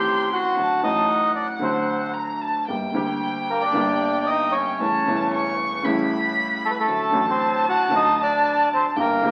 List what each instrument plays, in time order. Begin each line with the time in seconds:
Already playing: grand piano A1 A2 D#3 A3 C4 A4, bandoneon G4 G5, violin C6
0.33 bandoneon F#4 F#5
0.57 grand piano D2 D3 F#3 A3 F#4, violin A5
0.82 grand piano A1 A2 F#3 A3 F#4, bandoneon D#4 D#5
1.10 violin F#5
1.35 bandoneon D4 D5
1.59 grand piano D2 D3 F#3 A3 F#4, bandoneon C4 C5
2.14 violin A#5
2.41 violin A5
2.67 grand piano G1 G2 D3 G3 A#3 G4, violin G5
2.92 grand piano D2 D3 G3 A#3
2.96 grand piano G4
3.50 bandoneon A#3 A#4
3.62 bandoneon D4 D5
3.72 grand piano G1 G2 D3 G3 A#3 G4
4.26 bandoneon D#5
4.30 bandoneon D#4
4.52 bandoneon C#5
4.56 bandoneon C#4
4.80 grand piano A1 A2 C#3 G3 A3 E4, violin A5
5.05 grand piano E1 E2 C#3 G3 A3
5.09 grand piano E4
5.33 violin C#6
5.83 grand piano A1 A2 C#3 G3 A3, violin B5
5.87 grand piano E4
6.65 bandoneon A3 A4
6.71 bandoneon B4
6.80 bandoneon A3 A4
6.88 grand piano D2 D3 F#3 A3 F#4, violin A5
7.11 grand piano A1 A2 D3 F#3 A3 F#4
7.30 bandoneon C4 C5
7.69 bandoneon F#4 F#5
7.88 grand piano D2 D3 F#3 A3
7.93 bandoneon D#4 D#5, grand piano F#4
8.22 bandoneon D4 D5
8.74 bandoneon C4 C5
8.96 grand piano G1 G2 D3 G3 A#3 G4, bandoneon A#3, violin G5
9.00 bandoneon A#4
9.21 grand piano D2 D3 G3 A#3 G4